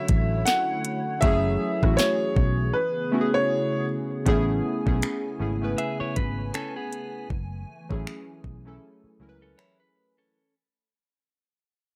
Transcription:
0.00 1.20 D3 medium
0.00 1.22 F#3 medium
0.00 2.70 A3 medium
0.00 1.23 C#4 medium
0.00 1.25 D4 medium
0.00 1.20 E4 medium
0.00 1.24 E4 medium
0.00 0.53 F#4 medium
0.00 1.24 A4 loud
0.00 1.19 C#5 medium
0.00 0.42 E5 loud
0.08 0.42 A1 medium
0.08 kick loud
0.08 closed hi-hat medium
0.45 1.24 F#5 medium
0.45 snare loud
0.45 closed hi-hat medium
0.85 closed hi-hat medium
1.21 1.56 F#1 loud
1.21 2.73 E3 medium
1.21 1.68 F#3 loud
1.21 1.68 A3 medium
1.21 1.69 C#4 medium
1.21 1.69 E4 medium
1.21 2.73 G#4 medium
1.21 1.69 G#4 loud
1.21 2.00 E5 loud
1.21 kick loud
1.21 closed hi-hat medium
1.82 1.97 A1 medium
1.82 2.74 F#3 medium
1.82 2.74 A3 medium
1.82 2.75 C#4 medium
1.82 2.75 E4 medium
1.82 2.76 F#4 medium
1.82 kick medium
1.82 cross-stick medium
1.97 2.76 C#5 loud
1.97 snare loud
1.97 closed hi-hat medium
2.36 2.70 B1 loud
2.36 kick loud
2.73 4.25 C#3 medium
2.73 4.25 B3 medium
2.73 4.25 G#4 medium
2.73 3.36 B4 medium
3.12 4.03 A3 medium
3.12 4.04 B3 medium
3.12 4.04 C#4 medium
3.12 4.04 E4 medium
3.12 3.21 F#4 medium
3.21 4.08 G#4 medium
3.34 3.84 C#5 medium
4.25 4.60 A1 loud
4.25 7.27 C#3 medium
4.25 4.72 A3 loud
4.25 7.27 B3 medium
4.25 4.72 B3 loud
4.25 4.72 C#4 medium
4.25 4.73 E4 medium
4.25 4.73 G#4 loud
4.25 10.30 G#5 medium
4.25 kick loud
4.25 closed hi-hat medium
4.86 5.01 B1 medium
4.86 5.30 A3 medium
4.86 5.30 B3 medium
4.86 5.30 C#4 medium
4.86 5.31 E4 medium
4.86 5.31 G#4 medium
4.86 kick medium
5.02 finger snap loud
5.02 closed hi-hat medium
5.39 5.74 G#1 medium
5.39 5.57 A3 medium
5.39 5.57 B3 medium
5.39 5.58 C#4 medium
5.39 5.58 E4 medium
5.39 5.58 G#4 medium
5.61 6.80 A3 medium
5.61 6.80 B3 medium
5.61 6.81 C#4 medium
5.61 6.81 E4 medium
5.61 6.81 B4 medium
5.78 5.99 G#4 medium
5.78 5.99 E5 medium
5.78 closed hi-hat medium
6.00 6.16 E4 medium
6.00 6.15 C#5 medium
6.00 muted fingered electric bass stroke soft
6.16 6.50 G#1 medium
6.16 6.52 B4 medium
6.16 kick medium
6.16 closed hi-hat medium
6.54 6.75 C#4 medium
6.54 6.75 A4 medium
6.54 finger snap loud
6.54 closed hi-hat medium
6.76 7.28 B3 medium
6.76 7.27 G#4 medium
6.93 closed hi-hat medium
7.30 7.64 F#1 loud
7.30 10.31 E3 medium
7.30 10.31 A3 medium
7.30 kick loud
7.89 8.04 A1 medium
7.89 8.46 F#3 medium
7.89 8.47 A3 medium
7.89 8.47 C#4 medium
7.89 8.47 E4 medium
7.89 8.48 G#4 medium
7.89 kick medium
8.07 finger snap loud
8.44 8.78 B1 medium
8.44 kick medium
8.65 9.09 F#3 medium
8.65 9.10 A3 medium
8.65 9.10 C#4 medium
8.65 9.10 E4 medium
8.65 9.11 A4 medium
9.04 muted fingered electric bass stroke soft
9.20 9.53 C#2 medium
9.20 10.11 F#3 medium
9.20 10.11 A3 medium
9.20 10.12 C#4 medium
9.20 10.12 E4 medium
9.20 9.29 A#4 medium
9.29 10.16 B4 loud
9.42 9.58 C#4 medium
9.42 9.57 A4 medium
9.58 9.79 E4 medium
9.58 9.79 C#5 medium
9.58 finger snap loud
9.80 10.16 B4 medium
10.18 10.54 C#4 medium
10.18 10.54 A4 medium

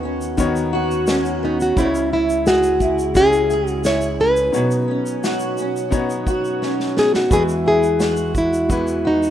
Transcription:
0.00 1.73 D#2 medium
0.00 0.37 D#3 medium
0.00 1.73 D#3 medium
0.00 1.77 D#3 medium
0.00 0.38 B3 medium
0.00 1.73 B3 medium
0.00 1.73 C#4 medium
0.00 1.07 C#4 medium
0.00 0.38 D#4 medium
0.00 0.39 F#4 medium
0.00 0.72 F#4 medium
0.00 0.70 B4 medium
0.00 0.40 C#5 medium
0.21 shaker medium
0.37 1.43 D#3 medium
0.37 1.41 B3 medium
0.37 1.43 B3 medium
0.37 1.43 D#4 medium
0.37 1.44 F#4 medium
0.37 1.44 C#5 loud
0.37 kick loud
0.37 shaker medium
0.56 shaker soft
0.73 1.83 F#4 medium
0.91 shaker soft
1.07 2.12 C#4 medium
1.07 snare loud
1.07 shaker medium
1.25 shaker soft
1.43 1.84 B3 medium
1.43 1.59 D#4 medium
1.60 1.77 F#4 medium
1.60 shaker medium
1.76 4.51 C#2 medium
1.76 4.51 C#3 medium
1.76 4.54 C#3 loud
1.76 2.81 G#3 medium
1.76 4.51 G#3 medium
1.76 2.82 C#4 medium
1.76 4.51 E4 medium
1.76 2.82 E4 medium
1.76 2.12 E4 loud
1.76 1.84 C5 medium
1.76 kick loud
1.76 shaker medium
1.85 2.86 C#5 medium
1.95 shaker medium
2.13 2.80 E4 medium
2.13 2.48 E4 medium
2.30 shaker medium
2.46 3.18 F#4 medium
2.46 3.49 G#4 medium
2.46 snare loud
2.46 shaker medium
2.63 shaker medium
2.80 3.84 E4 medium
2.80 kick medium
2.80 shaker medium
2.99 shaker medium
3.14 4.20 G#3 medium
3.14 4.20 C#4 medium
3.14 4.20 E4 medium
3.14 3.70 G#4 loud
3.14 4.21 C#5 medium
3.14 kick medium
3.14 shaker medium
3.33 shaker soft
3.50 4.61 G#4 medium
3.50 shaker medium
3.67 3.86 F#4 loud
3.67 shaker soft
3.84 4.61 E4 medium
3.84 4.20 C#5 loud
3.84 snare loud
3.84 shaker medium
4.01 shaker soft
4.19 4.88 C#4 medium
4.19 7.05 B4 loud
4.19 snare soft
4.36 shaker medium
4.52 7.28 B2 medium
4.52 7.31 B2 medium
4.52 7.28 F#3 medium
4.52 5.58 B3 medium
4.52 7.27 C#4 medium
4.52 5.58 D#4 medium
4.52 7.27 D#4 medium
4.52 5.59 F#4 medium
4.52 5.59 C#5 medium
4.52 shaker medium
4.71 shaker medium
4.88 5.57 C#4 medium
5.06 shaker medium
5.24 6.27 F#4 medium
5.24 snare loud
5.24 shaker medium
5.40 shaker medium
5.58 6.61 C#4 medium
5.58 shaker medium
5.76 shaker medium
5.90 6.96 B3 medium
5.90 6.97 D#4 medium
5.90 6.97 F#4 medium
5.90 6.98 C#5 medium
5.90 kick loud
5.90 shaker medium
6.10 shaker soft
6.27 7.69 F#4 medium
6.27 kick medium
6.27 shaker medium
6.45 shaker soft
6.62 7.38 C#4 medium
6.62 snare medium
6.80 snare medium
6.96 8.69 B3 medium
6.96 7.15 G#4 medium
6.96 snare medium
7.14 7.32 F#4 medium
7.14 snare medium
7.30 9.30 E2 medium
7.30 9.30 E3 medium
7.30 7.37 G3 medium
7.30 9.30 G#3 medium
7.30 8.36 E4 medium
7.30 8.36 F#4 medium
7.30 9.30 F#4 medium
7.30 7.42 G#4 loud
7.30 8.36 B4 medium
7.30 kick loud
7.30 shaker medium
7.36 8.39 G#3 medium
7.49 shaker soft
7.66 8.35 E4 medium
7.66 8.32 G#4 medium
7.83 shaker medium
8.00 9.04 F#4 medium
8.00 snare loud
8.00 shaker medium
8.16 shaker medium
8.35 8.71 E4 medium
8.35 kick medium
8.35 shaker medium
8.53 shaker medium
8.68 9.30 E3 medium
8.68 9.30 G#3 medium
8.68 9.30 B3 medium
8.68 9.30 F#4 medium
8.68 9.30 B4 medium
8.68 kick loud
8.68 shaker medium
8.73 9.06 E4 medium
8.87 shaker soft
9.05 9.30 D#4 medium
9.05 9.30 F#4 medium
9.23 shaker soft

